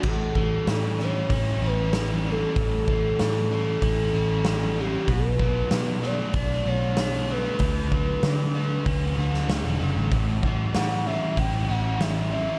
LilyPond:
<<
  \new Staff \with { instrumentName = "Soft synth lead" } { \time 4/4 \key a \mixolydian \tempo 4 = 95 a'4. cis''8 cis''8 b'4 a'8~ | a'2.~ a'8 g'8 | b'4. d''8 d''8 cis''4 b'8~ | b'2.~ b'8 r8 |
r4 fis''8 e''8 g''8 fis''8 e''8 e''8 | }
  \new Staff \with { instrumentName = "Overdriven electric guitar" } { \time 4/4 \key a \mixolydian a,8 g8 e8 g8 cis'8 e'8 cis'8 g8 | a,8 g8 e8 g8 cis'8 e'8 cis'8 g8 | b,8 a8 fis8 a8 d'8 fis'8 d'8 a8 | d8 a8 d8 a8 cis'8 fis'8 cis'8 a8 |
a,8 g8 e8 g8 cis'8 e'8 cis'8 g8 | }
  \new Staff \with { instrumentName = "Distorted electric guitar" } { \clef bass \time 4/4 \key a \mixolydian a,8 e8 e8 cis'8 e'8 cis'8 e8 cis'8 | a,8 e8 e8 cis'8 e'8 cis'8 e8 cis'8 | b,8 fis8 b,8 a8 d'8 a8 b,8 a8 | d8 fis8 d8 a8 cis'8 a8 d8 a8 |
a,8 e8 e8 cis'8 e'8 cis'8 e8 cis'8 | }
  \new Staff \with { instrumentName = "Picked electric bass" } { \clef bass \time 4/4 \key a \mixolydian a,,4 a,4 a,,8 a,,4. | a,,4 a,4 a,,8 a,,4. | b,,4 b,4 b,,8 b,,4. | d,4 d4 d,8 d,8 d,16 e,,16 fis,,16 a,,16 |
a,,4 a,4 a,,8 a,,4. | }
  \new DrumStaff \with { instrumentName = "Drums" } \drummode { \time 4/4 <cymc bd>8 bd8 <hho sn>8 sn8 <hho bd>4 <hho sn>4 | <hho bd>8 bd8 <hho sn>4 <hho bd>4 <hho sn>4 | <hho bd>8 bd8 <hho sn>8 sn8 <hho bd>4 <hho sn>4 | <hho bd>8 bd8 <hho sn>4 <hho bd>8. sn16 <hho sn>4 |
<hho bd>8 bd8 <hho sn>4 <hho bd>4 <hho sn>4 | }
>>